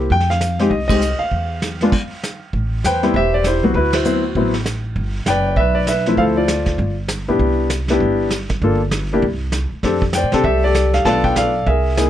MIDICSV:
0, 0, Header, 1, 5, 480
1, 0, Start_track
1, 0, Key_signature, 0, "minor"
1, 0, Tempo, 304260
1, 156, Time_signature, 4, 2, 24, 8
1, 19087, End_track
2, 0, Start_track
2, 0, Title_t, "Grand piano"
2, 0, Program_c, 0, 0
2, 188, Note_on_c, 0, 79, 97
2, 449, Note_off_c, 0, 79, 0
2, 476, Note_on_c, 0, 77, 84
2, 944, Note_on_c, 0, 60, 57
2, 950, Note_on_c, 0, 56, 62
2, 951, Note_on_c, 0, 67, 73
2, 953, Note_on_c, 0, 63, 61
2, 1101, Note_on_c, 0, 75, 73
2, 1103, Note_off_c, 0, 60, 0
2, 1106, Note_off_c, 0, 56, 0
2, 1107, Note_off_c, 0, 63, 0
2, 1107, Note_off_c, 0, 67, 0
2, 1147, Note_off_c, 0, 77, 0
2, 1362, Note_off_c, 0, 75, 0
2, 1385, Note_on_c, 0, 75, 90
2, 1409, Note_on_c, 0, 60, 50
2, 1410, Note_on_c, 0, 67, 66
2, 1411, Note_on_c, 0, 56, 59
2, 1412, Note_on_c, 0, 63, 51
2, 1575, Note_off_c, 0, 60, 0
2, 1576, Note_off_c, 0, 67, 0
2, 1577, Note_off_c, 0, 56, 0
2, 1577, Note_off_c, 0, 63, 0
2, 1877, Note_on_c, 0, 77, 85
2, 1894, Note_off_c, 0, 75, 0
2, 2875, Note_on_c, 0, 56, 67
2, 2876, Note_on_c, 0, 62, 62
2, 2879, Note_on_c, 0, 59, 63
2, 2887, Note_on_c, 0, 65, 70
2, 3028, Note_off_c, 0, 56, 0
2, 3029, Note_off_c, 0, 62, 0
2, 3030, Note_off_c, 0, 59, 0
2, 3034, Note_off_c, 0, 65, 0
2, 3741, Note_off_c, 0, 77, 0
2, 4506, Note_on_c, 0, 79, 94
2, 4521, Note_on_c, 0, 71, 68
2, 4524, Note_on_c, 0, 72, 67
2, 4780, Note_on_c, 0, 55, 66
2, 4787, Note_on_c, 0, 60, 63
2, 4788, Note_on_c, 0, 59, 58
2, 4788, Note_on_c, 0, 64, 77
2, 4940, Note_off_c, 0, 55, 0
2, 4944, Note_off_c, 0, 59, 0
2, 4944, Note_off_c, 0, 60, 0
2, 4944, Note_off_c, 0, 64, 0
2, 4971, Note_off_c, 0, 72, 0
2, 4984, Note_off_c, 0, 79, 0
2, 4989, Note_on_c, 0, 76, 91
2, 4995, Note_on_c, 0, 72, 66
2, 4998, Note_on_c, 0, 67, 58
2, 5249, Note_off_c, 0, 76, 0
2, 5271, Note_on_c, 0, 74, 80
2, 5394, Note_off_c, 0, 71, 0
2, 5446, Note_off_c, 0, 72, 0
2, 5449, Note_off_c, 0, 74, 0
2, 5452, Note_off_c, 0, 67, 0
2, 5470, Note_on_c, 0, 72, 78
2, 5476, Note_on_c, 0, 67, 53
2, 5486, Note_on_c, 0, 64, 57
2, 5737, Note_on_c, 0, 59, 54
2, 5739, Note_on_c, 0, 54, 64
2, 5744, Note_on_c, 0, 60, 56
2, 5744, Note_on_c, 0, 66, 64
2, 5898, Note_off_c, 0, 59, 0
2, 5899, Note_off_c, 0, 54, 0
2, 5902, Note_off_c, 0, 60, 0
2, 5902, Note_off_c, 0, 66, 0
2, 5902, Note_off_c, 0, 67, 0
2, 5908, Note_off_c, 0, 64, 0
2, 5920, Note_on_c, 0, 71, 86
2, 5945, Note_off_c, 0, 72, 0
2, 5946, Note_on_c, 0, 64, 62
2, 5951, Note_on_c, 0, 66, 58
2, 6193, Note_off_c, 0, 71, 0
2, 6209, Note_off_c, 0, 64, 0
2, 6212, Note_off_c, 0, 66, 0
2, 6212, Note_on_c, 0, 72, 72
2, 6233, Note_on_c, 0, 64, 53
2, 6236, Note_on_c, 0, 66, 50
2, 6378, Note_off_c, 0, 64, 0
2, 6394, Note_on_c, 0, 54, 61
2, 6395, Note_on_c, 0, 60, 62
2, 6397, Note_on_c, 0, 59, 58
2, 6402, Note_on_c, 0, 64, 70
2, 6661, Note_off_c, 0, 54, 0
2, 6661, Note_off_c, 0, 60, 0
2, 6662, Note_off_c, 0, 59, 0
2, 6665, Note_off_c, 0, 64, 0
2, 6882, Note_on_c, 0, 54, 57
2, 6884, Note_on_c, 0, 59, 54
2, 6890, Note_on_c, 0, 60, 58
2, 6893, Note_on_c, 0, 64, 63
2, 7108, Note_off_c, 0, 72, 0
2, 7120, Note_off_c, 0, 66, 0
2, 7145, Note_off_c, 0, 54, 0
2, 7146, Note_off_c, 0, 59, 0
2, 7149, Note_off_c, 0, 60, 0
2, 7150, Note_off_c, 0, 64, 0
2, 8326, Note_on_c, 0, 79, 94
2, 8349, Note_on_c, 0, 71, 69
2, 8361, Note_on_c, 0, 74, 72
2, 8785, Note_on_c, 0, 76, 86
2, 8804, Note_off_c, 0, 71, 0
2, 8814, Note_off_c, 0, 79, 0
2, 8827, Note_on_c, 0, 71, 71
2, 9044, Note_off_c, 0, 74, 0
2, 9068, Note_on_c, 0, 74, 76
2, 9095, Note_off_c, 0, 76, 0
2, 9249, Note_off_c, 0, 74, 0
2, 9280, Note_off_c, 0, 71, 0
2, 9282, Note_on_c, 0, 76, 72
2, 9303, Note_on_c, 0, 71, 62
2, 9581, Note_on_c, 0, 53, 54
2, 9588, Note_on_c, 0, 57, 59
2, 9590, Note_on_c, 0, 60, 54
2, 9598, Note_on_c, 0, 64, 66
2, 9736, Note_off_c, 0, 71, 0
2, 9751, Note_on_c, 0, 77, 91
2, 9772, Note_off_c, 0, 76, 0
2, 9776, Note_on_c, 0, 72, 59
2, 9777, Note_on_c, 0, 69, 68
2, 9830, Note_off_c, 0, 77, 0
2, 10047, Note_off_c, 0, 69, 0
2, 10051, Note_on_c, 0, 74, 71
2, 10064, Note_on_c, 0, 65, 52
2, 10070, Note_on_c, 0, 69, 46
2, 10203, Note_off_c, 0, 53, 0
2, 10206, Note_off_c, 0, 57, 0
2, 10207, Note_off_c, 0, 60, 0
2, 10211, Note_off_c, 0, 64, 0
2, 10662, Note_off_c, 0, 72, 0
2, 10678, Note_off_c, 0, 69, 0
2, 10948, Note_off_c, 0, 74, 0
2, 10955, Note_off_c, 0, 65, 0
2, 11492, Note_on_c, 0, 59, 60
2, 11493, Note_on_c, 0, 62, 53
2, 11496, Note_on_c, 0, 67, 67
2, 11497, Note_on_c, 0, 64, 56
2, 12118, Note_off_c, 0, 59, 0
2, 12119, Note_off_c, 0, 62, 0
2, 12120, Note_off_c, 0, 67, 0
2, 12121, Note_off_c, 0, 64, 0
2, 12466, Note_on_c, 0, 59, 67
2, 12469, Note_on_c, 0, 62, 65
2, 12474, Note_on_c, 0, 67, 72
2, 12475, Note_on_c, 0, 64, 63
2, 13085, Note_off_c, 0, 59, 0
2, 13087, Note_off_c, 0, 62, 0
2, 13089, Note_off_c, 0, 64, 0
2, 13089, Note_off_c, 0, 67, 0
2, 13612, Note_on_c, 0, 58, 63
2, 13618, Note_on_c, 0, 62, 55
2, 13624, Note_on_c, 0, 69, 65
2, 13628, Note_on_c, 0, 65, 53
2, 13871, Note_off_c, 0, 58, 0
2, 13874, Note_off_c, 0, 62, 0
2, 13876, Note_off_c, 0, 69, 0
2, 13878, Note_off_c, 0, 65, 0
2, 14398, Note_on_c, 0, 58, 66
2, 14404, Note_on_c, 0, 62, 64
2, 14406, Note_on_c, 0, 64, 58
2, 14406, Note_on_c, 0, 67, 71
2, 14549, Note_off_c, 0, 58, 0
2, 14553, Note_off_c, 0, 62, 0
2, 14553, Note_off_c, 0, 67, 0
2, 14554, Note_off_c, 0, 64, 0
2, 15527, Note_on_c, 0, 60, 61
2, 15531, Note_on_c, 0, 62, 56
2, 15531, Note_on_c, 0, 67, 55
2, 15536, Note_on_c, 0, 69, 65
2, 15788, Note_off_c, 0, 60, 0
2, 15790, Note_off_c, 0, 62, 0
2, 15790, Note_off_c, 0, 67, 0
2, 15793, Note_off_c, 0, 69, 0
2, 16012, Note_on_c, 0, 79, 80
2, 16049, Note_on_c, 0, 72, 60
2, 16056, Note_on_c, 0, 74, 64
2, 16295, Note_on_c, 0, 60, 76
2, 16295, Note_on_c, 0, 62, 65
2, 16307, Note_on_c, 0, 67, 64
2, 16312, Note_on_c, 0, 69, 85
2, 16451, Note_off_c, 0, 79, 0
2, 16458, Note_off_c, 0, 60, 0
2, 16458, Note_off_c, 0, 62, 0
2, 16464, Note_off_c, 0, 67, 0
2, 16467, Note_off_c, 0, 69, 0
2, 16478, Note_on_c, 0, 76, 83
2, 16500, Note_on_c, 0, 67, 58
2, 16508, Note_on_c, 0, 69, 58
2, 16753, Note_off_c, 0, 76, 0
2, 16762, Note_off_c, 0, 74, 0
2, 16786, Note_on_c, 0, 74, 83
2, 16790, Note_off_c, 0, 69, 0
2, 16795, Note_off_c, 0, 67, 0
2, 16813, Note_on_c, 0, 69, 57
2, 16818, Note_on_c, 0, 67, 55
2, 16920, Note_off_c, 0, 72, 0
2, 17261, Note_on_c, 0, 77, 80
2, 17274, Note_off_c, 0, 74, 0
2, 17412, Note_off_c, 0, 69, 0
2, 17414, Note_off_c, 0, 67, 0
2, 17437, Note_on_c, 0, 81, 97
2, 17445, Note_off_c, 0, 77, 0
2, 17446, Note_on_c, 0, 59, 61
2, 17451, Note_on_c, 0, 62, 62
2, 17457, Note_on_c, 0, 69, 75
2, 17458, Note_on_c, 0, 65, 60
2, 17467, Note_on_c, 0, 74, 77
2, 17469, Note_on_c, 0, 77, 75
2, 17739, Note_on_c, 0, 79, 89
2, 17743, Note_off_c, 0, 81, 0
2, 17907, Note_off_c, 0, 79, 0
2, 17915, Note_off_c, 0, 77, 0
2, 17939, Note_off_c, 0, 74, 0
2, 17939, Note_on_c, 0, 77, 93
2, 17944, Note_off_c, 0, 69, 0
2, 17963, Note_on_c, 0, 74, 62
2, 17968, Note_on_c, 0, 69, 58
2, 18160, Note_off_c, 0, 59, 0
2, 18162, Note_off_c, 0, 62, 0
2, 18166, Note_off_c, 0, 65, 0
2, 18389, Note_off_c, 0, 74, 0
2, 18391, Note_off_c, 0, 69, 0
2, 18409, Note_on_c, 0, 76, 66
2, 18423, Note_off_c, 0, 77, 0
2, 18426, Note_on_c, 0, 70, 55
2, 18428, Note_on_c, 0, 68, 59
2, 18851, Note_off_c, 0, 76, 0
2, 18873, Note_off_c, 0, 68, 0
2, 18891, Note_on_c, 0, 64, 48
2, 18892, Note_on_c, 0, 58, 56
2, 18895, Note_on_c, 0, 63, 44
2, 18897, Note_on_c, 0, 68, 64
2, 19087, Note_off_c, 0, 58, 0
2, 19087, Note_off_c, 0, 63, 0
2, 19087, Note_off_c, 0, 64, 0
2, 19087, Note_off_c, 0, 68, 0
2, 19087, Note_off_c, 0, 70, 0
2, 19087, End_track
3, 0, Start_track
3, 0, Title_t, "Upright bass"
3, 0, Program_c, 1, 32
3, 165, Note_on_c, 1, 41, 74
3, 1072, Note_off_c, 1, 41, 0
3, 1117, Note_on_c, 1, 36, 75
3, 1839, Note_off_c, 1, 36, 0
3, 2077, Note_on_c, 1, 40, 70
3, 2988, Note_off_c, 1, 40, 0
3, 3995, Note_on_c, 1, 33, 77
3, 4441, Note_off_c, 1, 33, 0
3, 4487, Note_on_c, 1, 40, 72
3, 4927, Note_off_c, 1, 40, 0
3, 4959, Note_on_c, 1, 28, 77
3, 5679, Note_off_c, 1, 28, 0
3, 5728, Note_on_c, 1, 36, 72
3, 5892, Note_off_c, 1, 36, 0
3, 5902, Note_on_c, 1, 38, 75
3, 6819, Note_off_c, 1, 38, 0
3, 6867, Note_on_c, 1, 33, 85
3, 7782, Note_off_c, 1, 33, 0
3, 7821, Note_on_c, 1, 31, 83
3, 8273, Note_off_c, 1, 31, 0
3, 8298, Note_on_c, 1, 30, 79
3, 8751, Note_off_c, 1, 30, 0
3, 8776, Note_on_c, 1, 35, 86
3, 9696, Note_off_c, 1, 35, 0
3, 9740, Note_on_c, 1, 38, 77
3, 10659, Note_off_c, 1, 38, 0
3, 10707, Note_on_c, 1, 31, 87
3, 11433, Note_off_c, 1, 31, 0
3, 11489, Note_on_c, 1, 35, 65
3, 11656, Note_off_c, 1, 35, 0
3, 11665, Note_on_c, 1, 36, 79
3, 12582, Note_off_c, 1, 36, 0
3, 12626, Note_on_c, 1, 31, 76
3, 13542, Note_off_c, 1, 31, 0
3, 13598, Note_on_c, 1, 31, 81
3, 14508, Note_off_c, 1, 31, 0
3, 14550, Note_on_c, 1, 36, 89
3, 15275, Note_off_c, 1, 36, 0
3, 15517, Note_on_c, 1, 41, 86
3, 16111, Note_off_c, 1, 41, 0
3, 16146, Note_on_c, 1, 45, 61
3, 16295, Note_off_c, 1, 45, 0
3, 16304, Note_on_c, 1, 48, 70
3, 16458, Note_off_c, 1, 48, 0
3, 16470, Note_on_c, 1, 36, 83
3, 17385, Note_off_c, 1, 36, 0
3, 17428, Note_on_c, 1, 35, 80
3, 17879, Note_off_c, 1, 35, 0
3, 17912, Note_on_c, 1, 35, 72
3, 18362, Note_off_c, 1, 35, 0
3, 18405, Note_on_c, 1, 36, 86
3, 19087, Note_off_c, 1, 36, 0
3, 19087, End_track
4, 0, Start_track
4, 0, Title_t, "Muted upright bass strokes"
4, 1890, Note_on_c, 9, 29, 37
4, 2048, Note_off_c, 9, 29, 0
4, 15337, Note_on_c, 9, 29, 41
4, 15495, Note_off_c, 9, 29, 0
4, 19087, End_track
5, 0, Start_track
5, 0, Title_t, "Drums"
5, 160, Note_on_c, 9, 36, 32
5, 165, Note_on_c, 9, 25, 46
5, 317, Note_off_c, 9, 36, 0
5, 320, Note_on_c, 9, 38, 25
5, 478, Note_off_c, 9, 38, 0
5, 487, Note_on_c, 9, 38, 36
5, 644, Note_off_c, 9, 38, 0
5, 644, Note_on_c, 9, 38, 54
5, 644, Note_on_c, 9, 44, 58
5, 801, Note_off_c, 9, 38, 0
5, 801, Note_off_c, 9, 44, 0
5, 936, Note_on_c, 9, 38, 36
5, 1094, Note_off_c, 9, 38, 0
5, 1117, Note_off_c, 9, 25, 0
5, 1117, Note_on_c, 9, 25, 42
5, 1117, Note_on_c, 9, 36, 29
5, 1274, Note_off_c, 9, 36, 0
5, 1411, Note_on_c, 9, 36, 75
5, 1417, Note_on_c, 9, 51, 65
5, 1568, Note_off_c, 9, 36, 0
5, 1575, Note_off_c, 9, 51, 0
5, 1602, Note_on_c, 9, 44, 55
5, 1760, Note_off_c, 9, 44, 0
5, 2074, Note_on_c, 9, 36, 31
5, 2082, Note_off_c, 9, 25, 0
5, 2082, Note_on_c, 9, 25, 46
5, 2232, Note_off_c, 9, 36, 0
5, 2556, Note_on_c, 9, 38, 57
5, 2556, Note_on_c, 9, 44, 49
5, 2714, Note_off_c, 9, 38, 0
5, 2714, Note_off_c, 9, 44, 0
5, 2853, Note_on_c, 9, 38, 33
5, 3011, Note_off_c, 9, 38, 0
5, 3034, Note_on_c, 9, 36, 76
5, 3037, Note_off_c, 9, 25, 0
5, 3037, Note_on_c, 9, 25, 45
5, 3037, Note_on_c, 9, 49, 57
5, 3192, Note_off_c, 9, 36, 0
5, 3195, Note_off_c, 9, 49, 0
5, 3525, Note_on_c, 9, 38, 57
5, 3525, Note_on_c, 9, 44, 51
5, 3683, Note_off_c, 9, 38, 0
5, 3683, Note_off_c, 9, 44, 0
5, 3995, Note_on_c, 9, 36, 31
5, 3999, Note_off_c, 9, 25, 0
5, 3999, Note_on_c, 9, 25, 48
5, 4153, Note_off_c, 9, 36, 0
5, 4486, Note_on_c, 9, 38, 55
5, 4486, Note_on_c, 9, 44, 55
5, 4644, Note_off_c, 9, 38, 0
5, 4644, Note_off_c, 9, 44, 0
5, 4780, Note_on_c, 9, 38, 35
5, 4938, Note_off_c, 9, 38, 0
5, 4954, Note_on_c, 9, 36, 33
5, 4955, Note_off_c, 9, 25, 0
5, 4955, Note_on_c, 9, 25, 51
5, 5112, Note_off_c, 9, 36, 0
5, 5429, Note_on_c, 9, 38, 56
5, 5429, Note_on_c, 9, 44, 53
5, 5587, Note_off_c, 9, 38, 0
5, 5587, Note_off_c, 9, 44, 0
5, 5907, Note_off_c, 9, 25, 0
5, 5907, Note_on_c, 9, 25, 46
5, 5910, Note_on_c, 9, 36, 31
5, 6067, Note_off_c, 9, 36, 0
5, 6198, Note_on_c, 9, 38, 73
5, 6198, Note_on_c, 9, 51, 61
5, 6356, Note_off_c, 9, 38, 0
5, 6356, Note_off_c, 9, 51, 0
5, 6383, Note_on_c, 9, 44, 50
5, 6541, Note_off_c, 9, 44, 0
5, 6865, Note_off_c, 9, 25, 0
5, 6865, Note_on_c, 9, 25, 49
5, 6867, Note_on_c, 9, 36, 29
5, 7025, Note_off_c, 9, 36, 0
5, 7160, Note_on_c, 9, 38, 44
5, 7317, Note_off_c, 9, 38, 0
5, 7347, Note_on_c, 9, 38, 60
5, 7347, Note_on_c, 9, 44, 56
5, 7504, Note_off_c, 9, 38, 0
5, 7504, Note_off_c, 9, 44, 0
5, 7821, Note_off_c, 9, 25, 0
5, 7821, Note_on_c, 9, 25, 54
5, 7823, Note_on_c, 9, 36, 30
5, 7980, Note_off_c, 9, 36, 0
5, 8299, Note_on_c, 9, 38, 59
5, 8299, Note_on_c, 9, 44, 57
5, 8457, Note_off_c, 9, 38, 0
5, 8457, Note_off_c, 9, 44, 0
5, 8775, Note_off_c, 9, 25, 0
5, 8775, Note_on_c, 9, 25, 49
5, 8778, Note_on_c, 9, 36, 34
5, 8936, Note_off_c, 9, 36, 0
5, 9260, Note_on_c, 9, 38, 59
5, 9260, Note_on_c, 9, 44, 54
5, 9417, Note_off_c, 9, 38, 0
5, 9417, Note_off_c, 9, 44, 0
5, 9562, Note_on_c, 9, 38, 36
5, 9720, Note_off_c, 9, 38, 0
5, 9741, Note_off_c, 9, 25, 0
5, 9741, Note_on_c, 9, 25, 39
5, 9741, Note_on_c, 9, 36, 34
5, 9898, Note_off_c, 9, 36, 0
5, 10224, Note_on_c, 9, 38, 63
5, 10224, Note_on_c, 9, 44, 53
5, 10382, Note_off_c, 9, 38, 0
5, 10382, Note_off_c, 9, 44, 0
5, 10505, Note_on_c, 9, 38, 37
5, 10515, Note_on_c, 9, 36, 42
5, 10663, Note_off_c, 9, 38, 0
5, 10673, Note_off_c, 9, 36, 0
5, 10697, Note_off_c, 9, 25, 0
5, 10697, Note_on_c, 9, 25, 44
5, 10700, Note_on_c, 9, 36, 32
5, 10858, Note_off_c, 9, 36, 0
5, 11175, Note_on_c, 9, 38, 60
5, 11175, Note_on_c, 9, 44, 63
5, 11333, Note_off_c, 9, 38, 0
5, 11333, Note_off_c, 9, 44, 0
5, 11664, Note_off_c, 9, 25, 0
5, 11664, Note_on_c, 9, 25, 43
5, 11666, Note_on_c, 9, 36, 34
5, 11824, Note_off_c, 9, 36, 0
5, 12144, Note_on_c, 9, 38, 60
5, 12144, Note_on_c, 9, 44, 57
5, 12302, Note_off_c, 9, 38, 0
5, 12302, Note_off_c, 9, 44, 0
5, 12434, Note_on_c, 9, 38, 42
5, 12592, Note_off_c, 9, 38, 0
5, 12620, Note_off_c, 9, 25, 0
5, 12620, Note_on_c, 9, 25, 45
5, 12627, Note_on_c, 9, 36, 31
5, 12785, Note_off_c, 9, 36, 0
5, 13102, Note_on_c, 9, 38, 54
5, 13102, Note_on_c, 9, 44, 57
5, 13260, Note_off_c, 9, 38, 0
5, 13260, Note_off_c, 9, 44, 0
5, 13402, Note_on_c, 9, 38, 39
5, 13409, Note_on_c, 9, 36, 48
5, 13560, Note_off_c, 9, 38, 0
5, 13567, Note_off_c, 9, 36, 0
5, 13593, Note_off_c, 9, 25, 0
5, 13593, Note_on_c, 9, 25, 45
5, 13593, Note_on_c, 9, 36, 32
5, 13751, Note_off_c, 9, 36, 0
5, 14062, Note_on_c, 9, 38, 60
5, 14062, Note_on_c, 9, 44, 60
5, 14219, Note_off_c, 9, 38, 0
5, 14219, Note_off_c, 9, 44, 0
5, 14548, Note_off_c, 9, 25, 0
5, 14548, Note_on_c, 9, 25, 42
5, 14554, Note_on_c, 9, 36, 31
5, 14712, Note_off_c, 9, 36, 0
5, 15020, Note_on_c, 9, 38, 62
5, 15020, Note_on_c, 9, 44, 67
5, 15178, Note_off_c, 9, 38, 0
5, 15178, Note_off_c, 9, 44, 0
5, 15509, Note_off_c, 9, 25, 0
5, 15509, Note_on_c, 9, 25, 48
5, 15509, Note_on_c, 9, 38, 35
5, 15510, Note_on_c, 9, 36, 33
5, 15666, Note_off_c, 9, 38, 0
5, 15668, Note_off_c, 9, 36, 0
5, 15805, Note_on_c, 9, 36, 53
5, 15963, Note_off_c, 9, 36, 0
5, 15980, Note_on_c, 9, 38, 63
5, 15980, Note_on_c, 9, 44, 58
5, 16138, Note_off_c, 9, 38, 0
5, 16138, Note_off_c, 9, 44, 0
5, 16280, Note_on_c, 9, 38, 35
5, 16437, Note_off_c, 9, 38, 0
5, 16465, Note_off_c, 9, 25, 0
5, 16465, Note_on_c, 9, 25, 45
5, 16466, Note_on_c, 9, 36, 32
5, 16624, Note_off_c, 9, 36, 0
5, 16953, Note_on_c, 9, 38, 64
5, 16953, Note_on_c, 9, 44, 48
5, 17111, Note_off_c, 9, 38, 0
5, 17111, Note_off_c, 9, 44, 0
5, 17251, Note_on_c, 9, 38, 39
5, 17409, Note_off_c, 9, 38, 0
5, 17434, Note_on_c, 9, 36, 32
5, 17441, Note_off_c, 9, 25, 0
5, 17441, Note_on_c, 9, 25, 51
5, 17441, Note_on_c, 9, 38, 41
5, 17592, Note_off_c, 9, 36, 0
5, 17599, Note_off_c, 9, 38, 0
5, 17733, Note_on_c, 9, 36, 51
5, 17891, Note_off_c, 9, 36, 0
5, 17921, Note_on_c, 9, 38, 62
5, 17921, Note_on_c, 9, 44, 56
5, 18079, Note_off_c, 9, 38, 0
5, 18079, Note_off_c, 9, 44, 0
5, 18402, Note_on_c, 9, 36, 31
5, 18409, Note_off_c, 9, 25, 0
5, 18409, Note_on_c, 9, 25, 41
5, 18560, Note_off_c, 9, 36, 0
5, 18890, Note_on_c, 9, 38, 65
5, 18890, Note_on_c, 9, 44, 62
5, 19048, Note_off_c, 9, 38, 0
5, 19048, Note_off_c, 9, 44, 0
5, 19087, Note_off_c, 9, 25, 0
5, 19087, End_track
0, 0, End_of_file